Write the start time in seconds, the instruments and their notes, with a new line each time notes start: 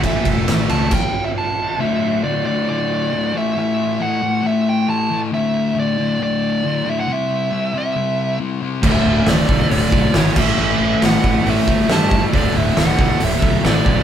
0.02 fingered electric bass A1, distorted electric guitar A2 E3 A3, lead electric guitar E5, kick, ride
0.25 fingered electric bass E1, kick, ride
0.48 fingered electric bass A1, snare, ride
0.69 fingered electric bass C#2, distorted electric guitar A2 E3 A3, lead electric guitar A5, ride
0.91 lead electric guitar G5, kick, crash
1.24 lead electric guitar E5
1.38 lead electric guitar A5
1.79 distorted electric guitar D2 A2 D3, lead electric guitar E5
2.24 distorted electric guitar D2 A2 D3, lead electric guitar D5
2.44 distorted electric guitar D2 A2 D3, lead electric guitar D5
2.68 distorted electric guitar D2 A2 D3, lead electric guitar D5
3.11 distorted electric guitar D2 A2 D3
3.34 distorted electric guitar A2 E3 A3
3.38 lead electric guitar E5
3.56 distorted electric guitar A2 E3 A3, lead electric guitar E5
4.00 distorted electric guitar A2 E3 A3, lead electric guitar F#5
4.21 distorted electric guitar A2 E3 A3
4.42 distorted electric guitar A2 E3 A3, lead electric guitar E5
4.69 lead electric guitar G5
4.88 distorted electric guitar A2 E3 A3, lead electric guitar A5
5.10 distorted electric guitar A2 E3 A3
5.32 distorted electric guitar D2 A2 D3, lead electric guitar E5
5.75 distorted electric guitar D2 A2 D3
5.79 lead electric guitar D5
5.98 distorted electric guitar D2 A2 D3
6.19 distorted electric guitar D2 A2 D3
6.23 lead electric guitar D5
6.63 distorted electric guitar D2 A2 D3
6.83 distorted electric guitar D2 A2 D3
6.89 lead electric guitar E5
7.00 lead electric guitar F#5
7.08 distorted electric guitar C3 G3 C4
7.13 lead electric guitar E5
7.50 distorted electric guitar C3 G3 C4
7.73 distorted electric guitar C3 G3 C4
7.78 lead electric guitar E5
7.95 distorted electric guitar C3 G3 C4
8.38 distorted electric guitar C3 G3 C4
8.61 distorted electric guitar C3 G3 C4
8.83 fingered electric bass D1, distorted electric guitar D2 A2 D3, lead electric guitar E5, kick, crash
9.06 fingered electric bass D1
9.26 fingered electric bass D1, distorted electric guitar D2 A2 D3, lead electric guitar D5, snare, open hi-hat
9.49 fingered electric bass B1, distorted electric guitar D2 A2 D3, kick
9.71 fingered electric bass D1, distorted electric guitar D2 A2 D3, lead electric guitar D5, open hi-hat
9.92 fingered electric bass B1, distorted electric guitar D2 A2 D3, kick
10.14 fingered electric bass G#1, distorted electric guitar D2 A2 D3, lead electric guitar C#5, snare, open hi-hat
10.36 fingered electric bass A1, distorted electric guitar A2 E3 A3, lead electric guitar E5, kick, crash
10.57 fingered electric bass A1, distorted electric guitar A2 E3 A3
10.62 lead electric guitar E5
10.80 fingered electric bass A1
11.01 fingered electric bass A1, distorted electric guitar A2 E3 A3, lead electric guitar F#5, snare, open hi-hat
11.24 fingered electric bass A1, distorted electric guitar A2 E3 A3, kick
11.44 fingered electric bass A1, distorted electric guitar A2 E3 A3, open hi-hat
11.50 lead electric guitar E5
11.67 fingered electric bass G1, distorted electric guitar A2 E3 A3, kick
11.89 fingered electric bass G2, distorted electric guitar A2 E3 A3, lead electric guitar A5, snare, open hi-hat
12.11 distorted electric guitar A2 E3 A3, kick
12.33 fingered electric bass D1, distorted electric guitar D2 A2 D3, lead electric guitar D5, kick, open hi-hat
12.56 fingered electric bass D1, lead electric guitar E5
12.77 fingered electric bass D1, distorted electric guitar D2 A2 D3, lead electric guitar F#5, snare, open hi-hat
12.99 fingered electric bass B1, distorted electric guitar D2 A2 D3, lead electric guitar F#5, kick
13.20 fingered electric bass D1, distorted electric guitar D2 A2 D3, lead electric guitar E5, open hi-hat
13.41 fingered electric bass B1, distorted electric guitar D2 A2 D3, kick
13.65 fingered electric bass A1, distorted electric guitar D2 A2 D3, lead electric guitar D5, snare, open hi-hat
13.86 fingered electric bass B1, distorted electric guitar D2 A2 D3, kick